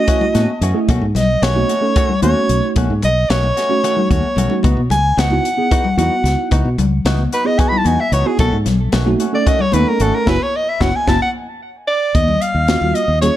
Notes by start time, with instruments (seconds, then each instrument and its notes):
Already playing: tine electric piano A3 C#4 E4 F#4, soprano saxophone D#5
0.08 clean electric guitar E3 A3 C#4 F#4, kick, closed hi-hat, low conga
0.21 low conga
0.34 fingered electric bass A2, clean electric guitar A3 C#4 F#4, tine electric piano A5, snare, closed hi-hat, high conga
0.61 fingered electric bass F#2, clean electric guitar E3 A3 C#4 F#4, tine electric piano E5, closed hi-hat
0.74 tine electric piano A3 C#4 E4 G#4
0.88 fingered electric bass B1, clean electric guitar D#3 A3 C#4 F#4, kick, closed hi-hat, high conga
1.01 fingered electric bass G#2, low conga
1.15 fingered electric bass B1, soprano saxophone D#5, snare, closed hi-hat, low conga
1.42 fingered electric bass B1, clean electric guitar D#3 A3 C#4 F#4, soprano saxophone C#5, snare, closed hi-hat
1.55 tine electric piano A3 C#4 D#4 F#4, high conga
1.69 clean electric guitar A3 C#4 F#4, closed hi-hat
1.81 tine electric piano A3 C#4 D#4 A4
1.96 clean electric guitar D#3 A3 C#4 F#4, kick, closed hi-hat, low conga
2.09 low conga
2.22 fingered electric bass D#2, tine electric piano A3 C#4 D#4 F#4, clean electric guitar A3 C#4 F#4, soprano saxophone C#5, closed hi-hat, high conga
2.49 fingered electric bass B1, closed hi-hat
2.76 fingered electric bass B1, clean electric guitar D#3 A3 C#4 F#4, kick, closed hi-hat, high conga, low conga
2.89 fingered electric bass G#2, low conga
3.02 fingered electric bass B1, soprano saxophone D#5, closed hi-hat, low conga
3.16 low conga
3.30 fingered electric bass B1, clean electric guitar D#3 A3 C#4 F#4, soprano saxophone C#5, snare, closed hi-hat
3.43 high conga, low conga
3.56 clean electric guitar A3 C#4 F#4, snare, closed hi-hat, low conga
3.69 tine electric piano A3 C#4 D#4 F#4, low conga
3.84 clean electric guitar D#3 A3 C#4 F#4, closed hi-hat
3.97 low conga
4.10 fingered electric bass D#2, clean electric guitar A3 C#4 F#4, soprano saxophone C#5, kick, closed hi-hat, high conga
4.23 high conga
4.36 fingered electric bass B1, clean electric guitar D#3 A3 C#4 F#4, closed hi-hat, low conga
4.49 tine electric piano A3 C#4 D#4 F#4, low conga
4.63 fingered electric bass C#2, clean electric guitar E3 B3 D#4 F#4, kick, closed hi-hat, high conga
4.76 fingered electric bass B2, low conga
4.90 fingered electric bass C#2, soprano saxophone G#5, closed hi-hat, low conga
5.17 fingered electric bass C#2, clean electric guitar E3 B3 D#4 F#4, soprano saxophone F#5, snare, closed hi-hat
5.30 tine electric piano B3 D#4 E4 F#4, high conga
5.45 closed hi-hat
5.57 tine electric piano B3 D#4 E4 G#4
5.71 clean electric guitar E3 B3 D#4 F#4, kick, closed hi-hat, low conga
5.85 low conga
5.97 fingered electric bass E2, tine electric piano B3 D#4 E4 F#4, clean electric guitar B3 D#4 F#4, soprano saxophone F#5, closed hi-hat, high conga
6.24 fingered electric bass C#2, snare, closed hi-hat
6.51 fingered electric bass C#2, clean electric guitar E3 B3 D#4 F#4, kick, closed hi-hat, high conga
6.65 fingered electric bass B2, low conga
6.78 fingered electric bass C#2, closed hi-hat, low conga
7.05 fingered electric bass C#2, clean electric guitar E3 B3 D#4 F#4, snare, closed hi-hat
7.19 high conga
7.33 clean electric guitar B3 D#4 F#4, soprano saxophone B4, closed hi-hat
7.45 tine electric piano B3 D#4 E4 G#4, soprano saxophone D#5
7.59 clean electric guitar E3 B3 D#4 F#4, soprano saxophone G#5, kick, closed hi-hat, low conga
7.69 soprano saxophone B5, low conga
7.78 soprano saxophone A5
7.85 fingered electric bass E2, clean electric guitar B3 D#4 F#4, soprano saxophone G#5, closed hi-hat, high conga
8.00 soprano saxophone E5
8.12 fingered electric bass C#2, clean electric guitar E3 B3 D#4 F#4, soprano saxophone C#5, closed hi-hat
8.26 tine electric piano B3 D#4 E4 F#4, soprano saxophone G#4
8.38 fingered electric bass B1, clean electric guitar D#3 A3 C#4 F#4, soprano saxophone A4, kick, closed hi-hat, high conga
8.52 fingered electric bass G#2, low conga
8.66 fingered electric bass B1, snare, closed hi-hat, low conga
8.92 fingered electric bass B1, clean electric guitar D#3 A3 C#4 F#4, snare, closed hi-hat
9.06 tine electric piano A3 C#4 D#4 F#4, high conga
9.20 clean electric guitar A3 C#4 F#4, closed hi-hat
9.32 tine electric piano A3 C#4 D#4 A4, soprano saxophone D5
9.46 clean electric guitar D#3 A3 C#4 F#4, soprano saxophone D#5, kick, closed hi-hat, low conga
9.59 soprano saxophone C#5, low conga
9.72 fingered electric bass D#2, tine electric piano A3 C#4 D#4 A4, clean electric guitar A3 C#4 F#4, soprano saxophone B4, closed hi-hat, high conga
9.88 soprano saxophone A#4
10.00 fingered electric bass G#1, clean electric guitar D#3 A3 C#4 F#4, soprano saxophone A4, closed hi-hat
10.15 soprano saxophone A#4
10.26 fingered electric bass F#1, tine electric piano C#4 E4 F#4, clean electric guitar C#4 E4 F#4, soprano saxophone B4, kick, snare, high conga
10.43 soprano saxophone C#5
10.56 soprano saxophone D#5
10.69 soprano saxophone E5
10.80 fingered electric bass F#1, tine electric piano C#4 E4 F#4, clean electric guitar C#4 E4 F#4, soprano saxophone F#5, kick, snare, high conga
10.96 soprano saxophone G#5
11.07 fingered electric bass F#1, clean electric guitar C#4 E4 F#4, tine electric piano C#4 E4 F#4, soprano saxophone A5, kick, snare, high conga
11.22 soprano saxophone F#5
11.88 soprano saxophone D5, flute D6
12.14 fingered electric bass D#2, soprano saxophone D#5, flute D#6, kick, closed hi-hat, high conga, low conga
12.28 low conga
12.42 soprano saxophone F5, flute F6, closed hi-hat
12.55 fingered electric bass D#2
12.68 tine electric piano A#3 C#4 F4 F#4, snare, closed hi-hat
12.81 fingered electric bass D#2, high conga, low conga
12.95 soprano saxophone D#5, flute D#6, closed hi-hat
13.08 fingered electric bass D#2
13.21 tine electric piano A#3 C#4 F4 G#4, soprano saxophone C#5, flute C#6, closed hi-hat, low conga